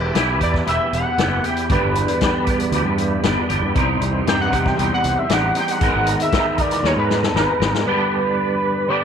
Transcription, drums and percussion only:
0.15 snare, closed hi-hat
0.41 kick, closed hi-hat
0.54 kick, snare
0.67 closed hi-hat
0.93 closed hi-hat
1.18 snare, closed hi-hat
1.44 closed hi-hat
1.57 closed hi-hat
1.70 kick, closed hi-hat
1.95 closed hi-hat
2.08 closed hi-hat
2.21 kick, snare, closed hi-hat
2.47 kick, closed hi-hat
2.60 closed hi-hat
2.72 closed hi-hat
2.98 closed hi-hat
3.23 snare, closed hi-hat
3.50 closed hi-hat
3.75 kick, closed hi-hat
4.01 closed hi-hat
4.27 snare, closed hi-hat
4.53 kick, closed hi-hat
4.66 kick, snare
4.79 closed hi-hat
5.04 closed hi-hat
5.29 snare, closed hi-hat
5.55 closed hi-hat
5.68 closed hi-hat
5.81 kick, closed hi-hat
6.07 closed hi-hat
6.20 closed hi-hat
6.32 kick, snare, closed hi-hat
6.58 kick, closed hi-hat
6.71 snare, closed hi-hat
6.84 snare
7.10 snare
7.23 snare
7.36 snare
7.61 snare
7.74 snare

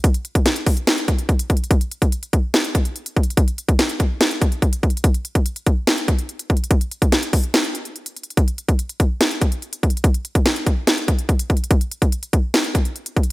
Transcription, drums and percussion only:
0.04 kick, closed hi-hat
0.14 closed hi-hat
0.25 closed hi-hat
0.35 kick, closed hi-hat
0.46 snare, closed hi-hat
0.56 closed hi-hat
0.66 kick, closed hi-hat, open hi-hat
0.77 closed hi-hat
0.87 snare, closed hi-hat
0.98 closed hi-hat
1.08 kick, closed hi-hat
1.19 closed hi-hat
1.29 kick, closed hi-hat
1.39 closed hi-hat
1.50 kick, closed hi-hat
1.57 closed hi-hat
1.64 closed hi-hat
1.71 kick, closed hi-hat
1.81 closed hi-hat
1.91 closed hi-hat
2.02 kick, closed hi-hat
2.12 closed hi-hat
2.23 closed hi-hat
2.33 kick, closed hi-hat
2.54 snare, closed hi-hat
2.64 closed hi-hat
2.75 kick, closed hi-hat
2.85 closed hi-hat
2.96 closed hi-hat
3.06 closed hi-hat
3.16 kick, closed hi-hat
3.23 closed hi-hat
3.30 closed hi-hat
3.37 kick, closed hi-hat
3.48 closed hi-hat
3.58 closed hi-hat
3.69 kick, closed hi-hat
3.79 snare, closed hi-hat
3.89 closed hi-hat
4.00 kick, closed hi-hat
4.21 snare, closed hi-hat
4.31 closed hi-hat
4.42 kick, closed hi-hat
4.52 closed hi-hat
4.62 kick, closed hi-hat
4.73 closed hi-hat
4.83 kick, closed hi-hat
4.90 closed hi-hat
4.97 closed hi-hat
5.04 kick, closed hi-hat
5.14 closed hi-hat
5.25 closed hi-hat
5.35 kick, closed hi-hat
5.46 closed hi-hat
5.56 closed hi-hat
5.66 kick, closed hi-hat
5.87 snare, closed hi-hat
5.98 closed hi-hat
6.08 kick, closed hi-hat
6.19 closed hi-hat
6.29 closed hi-hat
6.39 closed hi-hat
6.50 kick, closed hi-hat
6.57 closed hi-hat
6.64 closed hi-hat
6.71 kick, closed hi-hat
6.81 closed hi-hat
6.91 closed hi-hat
7.02 kick, closed hi-hat
7.12 snare, closed hi-hat
7.23 closed hi-hat
7.33 kick, closed hi-hat, open hi-hat
7.44 closed hi-hat
7.54 snare, closed hi-hat
7.64 closed hi-hat
7.75 closed hi-hat
7.85 closed hi-hat
7.96 closed hi-hat
8.06 closed hi-hat
8.16 closed hi-hat
8.23 closed hi-hat
8.30 closed hi-hat
8.37 kick, closed hi-hat
8.48 closed hi-hat
8.58 closed hi-hat
8.69 kick, closed hi-hat
8.79 closed hi-hat
8.89 closed hi-hat
9.00 kick, closed hi-hat
9.21 snare, closed hi-hat
9.31 closed hi-hat
9.41 kick, closed hi-hat
9.52 closed hi-hat
9.62 closed hi-hat
9.73 closed hi-hat
9.83 kick, closed hi-hat
9.90 closed hi-hat
9.97 closed hi-hat
10.04 kick, closed hi-hat
10.14 closed hi-hat
10.25 closed hi-hat
10.35 kick, closed hi-hat
10.46 snare, closed hi-hat
10.56 closed hi-hat
10.66 kick, closed hi-hat
10.87 snare, closed hi-hat
10.98 closed hi-hat
11.08 kick, closed hi-hat
11.19 closed hi-hat
11.29 kick, closed hi-hat
11.39 closed hi-hat
11.50 kick, closed hi-hat
11.57 closed hi-hat
11.64 closed hi-hat
11.71 kick, closed hi-hat
11.81 closed hi-hat
11.91 closed hi-hat
12.02 kick, closed hi-hat
12.12 closed hi-hat
12.23 closed hi-hat
12.33 kick, closed hi-hat
12.54 snare, closed hi-hat
12.64 closed hi-hat
12.75 kick, closed hi-hat
12.85 closed hi-hat
12.96 closed hi-hat
13.06 closed hi-hat
13.17 kick, closed hi-hat
13.23 closed hi-hat

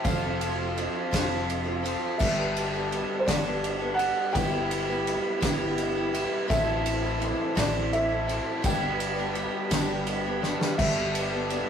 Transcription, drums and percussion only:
0.05 kick, ride, tambourine
0.41 ride
0.78 ride
1.13 kick, snare, ride, tambourine
1.31 tambourine
1.50 ride
1.84 ride, tambourine
2.19 kick, crash, tambourine
2.57 ride
2.74 tambourine
2.92 ride
3.28 kick, snare, ride, tambourine
3.64 ride
3.99 ride
4.35 kick, ride, tambourine
4.71 ride
4.90 tambourine
5.07 ride
5.42 kick, snare, ride, tambourine
5.78 ride
6.15 ride
6.50 kick, ride, tambourine
6.86 ride
7.04 tambourine
7.22 ride
7.57 kick, snare, ride, tambourine
7.93 ride
8.29 ride
8.64 kick, ride, tambourine
9.00 ride
9.18 tambourine
9.35 ride
9.71 kick, snare, ride, tambourine
10.06 ride, tambourine
10.43 snare
10.60 snare, tambourine
10.79 kick, crash
11.15 ride
11.50 ride

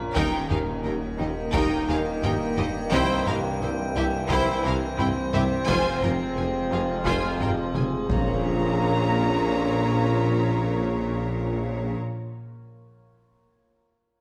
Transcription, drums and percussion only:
0.16 taiko
0.51 taiko low-mid
1.54 taiko
1.89 taiko rim
2.23 taiko low-mid
2.57 taiko low-mid
2.92 taiko
3.27 taiko low-mid
4.30 taiko
4.99 taiko low-mid
5.34 taiko low-mid
5.69 taiko
6.03 taiko low-mid
6.71 taiko rim
7.06 taiko
7.40 taiko low-mid
7.75 taiko mid
8.10 taiko

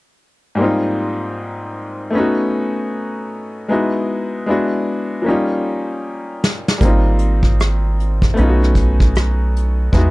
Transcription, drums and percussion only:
6.44 snare
6.68 snare
6.81 kick, closed hi-hat
7.19 closed hi-hat
7.43 kick
7.60 cross-stick, closed hi-hat
8.00 closed hi-hat
8.22 kick
8.37 closed hi-hat
8.63 cross-stick
8.75 kick, closed hi-hat
9.00 kick, cross-stick
9.15 cross-stick, closed hi-hat
9.56 closed hi-hat
9.93 kick, closed hi-hat

